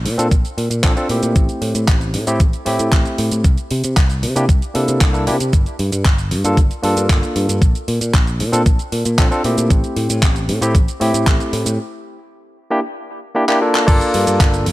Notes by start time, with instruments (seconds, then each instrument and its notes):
0.05 picked electric bass A#2, open hi-hat
0.18 picked electric bass A#2, tine electric piano C4 D4 F4 A4, closed hi-hat, shaker
0.31 picked electric bass A#1, kick, closed hi-hat, shaker
0.45 closed hi-hat, shaker
0.58 picked electric bass A#2, open hi-hat
0.70 picked electric bass A#2, closed hi-hat, shaker
0.83 picked electric bass A#1, tine electric piano C4 D4 F4 A4, kick, clap, closed hi-hat, shaker
0.97 tine electric piano C4 D4 F4 A4, closed hi-hat, shaker
1.09 picked electric bass A#2, tine electric piano A3 C4 E4 G4, open hi-hat
1.23 picked electric bass A#2, closed hi-hat, shaker
1.36 picked electric bass A1, kick, closed hi-hat, shaker
1.49 closed hi-hat, shaker
1.62 picked electric bass A2, open hi-hat
1.75 picked electric bass A2, closed hi-hat, shaker
1.88 picked electric bass A1, kick, clap, closed hi-hat, shaker
2.01 closed hi-hat, shaker
2.14 picked electric bass A2, open hi-hat
2.27 picked electric bass A2, tine electric piano A3 C4 E4 G4, closed hi-hat, shaker
2.40 picked electric bass A1, kick, closed hi-hat, shaker
2.53 closed hi-hat, shaker
2.65 picked electric bass A2, tine electric piano A3 C4 E4 G4, open hi-hat
2.79 picked electric bass A2, closed hi-hat, shaker
2.92 picked electric bass A1, kick, clap, closed hi-hat, shaker
3.05 closed hi-hat, shaker
3.18 picked electric bass A2, open hi-hat
3.31 picked electric bass A2, closed hi-hat, shaker
3.44 picked electric bass C2, kick, closed hi-hat, shaker
3.58 closed hi-hat, shaker
3.71 picked electric bass C3, open hi-hat
3.84 picked electric bass C3, closed hi-hat, shaker
3.97 picked electric bass C2, kick, clap, closed hi-hat, shaker
4.10 closed hi-hat, shaker
4.23 picked electric bass C3, open hi-hat
4.36 picked electric bass C3, tine electric piano A#3 D4 E4 G4, closed hi-hat, shaker
4.49 picked electric bass C2, kick, closed hi-hat, shaker
4.62 closed hi-hat, shaker
4.74 picked electric bass C3, tine electric piano A#3 D4 E4 A4, open hi-hat
4.88 picked electric bass C3, closed hi-hat, shaker
5.01 picked electric bass C2, kick, clap, closed hi-hat, shaker
5.13 tine electric piano A#3 D4 E4 A4, closed hi-hat, shaker
5.27 picked electric bass C3, tine electric piano A#3 D4 E4 G4, open hi-hat
5.40 picked electric bass C3, closed hi-hat, shaker
5.53 picked electric bass G1, kick, closed hi-hat, shaker
5.66 closed hi-hat, shaker
5.79 picked electric bass G2, open hi-hat
5.92 picked electric bass G2, closed hi-hat, shaker
6.05 picked electric bass G1, kick, clap, closed hi-hat, shaker
6.18 closed hi-hat, shaker
6.31 picked electric bass G2, open hi-hat
6.44 picked electric bass G2, tine electric piano A#3 D4 F4 A4, closed hi-hat, shaker
6.57 picked electric bass G1, kick, closed hi-hat, shaker
6.71 closed hi-hat, shaker
6.82 picked electric bass G2, tine electric piano A#3 D4 F4 A4, open hi-hat
6.97 picked electric bass G2, closed hi-hat, shaker
7.10 picked electric bass G1, kick, clap, closed hi-hat, shaker
7.23 closed hi-hat, shaker
7.36 picked electric bass G2, open hi-hat
7.49 picked electric bass G2, closed hi-hat, shaker
7.62 picked electric bass A#1, kick, closed hi-hat, shaker
7.75 closed hi-hat, shaker
7.88 picked electric bass A#2, open hi-hat
8.01 picked electric bass A#2, closed hi-hat, shaker
8.14 picked electric bass A#1, kick, clap, closed hi-hat, shaker
8.27 closed hi-hat, shaker
8.40 picked electric bass A#2, open hi-hat
8.52 picked electric bass A#2, tine electric piano C4 D4 F4 A4, closed hi-hat, shaker
8.66 picked electric bass A#1, kick, closed hi-hat, shaker
8.79 closed hi-hat, shaker
8.92 picked electric bass A#2, open hi-hat
9.05 picked electric bass A#2, closed hi-hat, shaker
9.18 picked electric bass A#1, tine electric piano C4 D4 F4 A4, kick, clap, closed hi-hat, shaker
9.31 tine electric piano C4 D4 F4 A4, closed hi-hat, shaker
9.44 picked electric bass A#2, tine electric piano A3 C4 E4 G4, open hi-hat
9.58 picked electric bass A#2, closed hi-hat, shaker
9.70 picked electric bass A1, kick, closed hi-hat, shaker
9.84 closed hi-hat, shaker
9.96 picked electric bass A2, open hi-hat
10.10 picked electric bass A2, closed hi-hat, shaker
10.23 picked electric bass A1, kick, clap, closed hi-hat, shaker
10.36 closed hi-hat, shaker
10.48 picked electric bass A2, open hi-hat
10.61 picked electric bass A2, tine electric piano A3 C4 E4 G4, closed hi-hat, shaker
10.75 picked electric bass A1, kick, closed hi-hat, shaker
10.88 closed hi-hat, shaker
11.00 picked electric bass A2, tine electric piano A3 C4 E4 G4, open hi-hat
11.14 picked electric bass A2, closed hi-hat, shaker
11.27 picked electric bass A1, kick, clap, closed hi-hat, shaker
11.40 closed hi-hat, shaker
11.53 picked electric bass A2, open hi-hat
11.66 picked electric bass A2, closed hi-hat, shaker
12.71 tine electric piano A#3 D4 E4 G4
13.35 tine electric piano A#3 D4 E4 G4
13.48 tine electric piano A#3 D4 E4 G4, clap
13.61 tine electric piano A#3 D4 F4 A4
13.75 clap
13.86 picked electric bass G1, tine electric piano A#3 D4 F4 A4, kick, closed hi-hat, crash, shaker
14.01 closed hi-hat, shaker
14.14 picked electric bass G2, open hi-hat
14.27 picked electric bass G2, closed hi-hat, shaker
14.40 picked electric bass G1, kick, clap, closed hi-hat, shaker
14.54 closed hi-hat, shaker
14.66 picked electric bass G2, open hi-hat